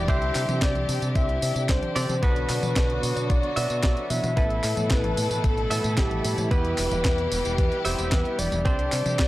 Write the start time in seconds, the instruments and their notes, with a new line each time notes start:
Already playing: string section G3 G4
0.08 fingered electric bass C2, string section C3 D3 D4, clean electric guitar C4 D4 G4 C5, soft synth lead E5, kick, closed hi-hat, tambourine
0.22 closed hi-hat
0.35 fingered electric bass C3, clap, open hi-hat, tambourine
0.49 fingered electric bass C3, closed hi-hat, high tom, tambourine
0.62 fingered electric bass C2, soft synth lead D5, kick, snare, clap, closed hi-hat, tambourine
0.75 closed hi-hat, high tom
0.89 fingered electric bass C3, open hi-hat, tambourine
1.02 fingered electric bass C3, closed hi-hat, tambourine
1.16 fingered electric bass C2, soft synth lead E5, kick, closed hi-hat, tambourine
1.29 closed hi-hat
1.42 fingered electric bass C3, open hi-hat, tambourine
1.56 fingered electric bass C3, closed hi-hat, tambourine
1.69 fingered electric bass C2, soft synth lead C5, kick, snare, clap, closed hi-hat, tambourine
1.83 closed hi-hat, high tom
1.96 fingered electric bass C3, clean electric guitar C4 D4 G4 D5, open hi-hat, tambourine
2.09 fingered electric bass C3, closed hi-hat, high tom, tambourine
2.22 fingered electric bass B1, string section B2 F#3 F#4, clean electric guitar B3 D4 F#4 B4, soft synth lead B4, kick, closed hi-hat, tambourine
2.36 closed hi-hat
2.50 fingered electric bass B2, clap, open hi-hat, tambourine
2.63 fingered electric bass B2, closed hi-hat, high tom, tambourine
2.76 fingered electric bass B1, kick, snare, clap, closed hi-hat, tambourine
2.90 closed hi-hat
3.03 fingered electric bass B2, open hi-hat, tambourine
3.17 fingered electric bass B2, closed hi-hat, tambourine
3.30 fingered electric bass B1, soft synth lead D5, kick, closed hi-hat, tambourine
3.43 closed hi-hat
3.56 fingered electric bass B2, clean electric guitar B3 D4 F#4 E5, open hi-hat, tambourine
3.70 fingered electric bass B2, closed hi-hat, tambourine
3.83 fingered electric bass B1, kick, snare, clap, closed hi-hat, tambourine
3.97 closed hi-hat
4.10 fingered electric bass B2, soft synth lead E5, open hi-hat, high tom, tambourine
4.24 fingered electric bass B2, closed hi-hat, high tom, tambourine
4.37 fingered electric bass A1, string section E3 A3 E4 A4, clean electric guitar B3 E4 A4 B4, kick, closed hi-hat, tambourine
4.50 closed hi-hat
4.64 fingered electric bass A2, clap, open hi-hat, tambourine
4.77 fingered electric bass A2, closed hi-hat, high tom, tambourine
4.90 fingered electric bass A1, soft synth lead B4, kick, snare, clap, closed hi-hat, tambourine
5.04 closed hi-hat, high tom
5.17 fingered electric bass A2, open hi-hat, tambourine
5.31 fingered electric bass A2, closed hi-hat, tambourine
5.44 fingered electric bass A1, soft synth lead A4, kick, closed hi-hat, tambourine
5.57 closed hi-hat
5.71 fingered electric bass A2, clean electric guitar B3 E4 A4 E5, open hi-hat, tambourine
5.84 fingered electric bass A2, closed hi-hat, tambourine
5.98 fingered electric bass A1, soft synth lead G4, kick, snare, clap, closed hi-hat, tambourine
6.11 closed hi-hat, high tom
6.24 fingered electric bass A2, open hi-hat, tambourine
6.38 fingered electric bass A2, closed hi-hat, high tom, tambourine
6.51 fingered electric bass E2, string section E3 G3 G4, clean electric guitar B3 E4 G4 B4, soft synth lead B4, kick, closed hi-hat, tambourine
6.65 closed hi-hat
6.78 fingered electric bass E1, clap, open hi-hat, tambourine
6.91 fingered electric bass E1, closed hi-hat, high tom, tambourine
7.05 fingered electric bass E2, kick, snare, clap, closed hi-hat, tambourine
7.18 closed hi-hat
7.32 fingered electric bass E1, open hi-hat, tambourine
7.45 fingered electric bass E1, closed hi-hat, tambourine
7.58 fingered electric bass E2, soft synth lead B4, kick, closed hi-hat, tambourine
7.72 closed hi-hat
7.85 fingered electric bass E1, clean electric guitar B3 E4 G4 E5, soft synth lead C5, open hi-hat, tambourine
7.99 fingered electric bass E1, closed hi-hat, tambourine
8.12 fingered electric bass E2, soft synth lead B4, kick, snare, clap, closed hi-hat, tambourine
8.25 closed hi-hat
8.39 fingered electric bass E1, soft synth lead D5, open hi-hat, high tom, tambourine
8.52 fingered electric bass E1, closed hi-hat, high tom, tambourine
8.65 fingered electric bass C2, string section C3 D3 G3 D4 G4, clean electric guitar C4 D4 G4 C5, kick, closed hi-hat, tambourine
8.79 closed hi-hat
8.92 fingered electric bass C3, clap, open hi-hat, tambourine
9.06 fingered electric bass C3, closed hi-hat, high tom, tambourine
9.19 fingered electric bass C2, kick, snare, clap, closed hi-hat, tambourine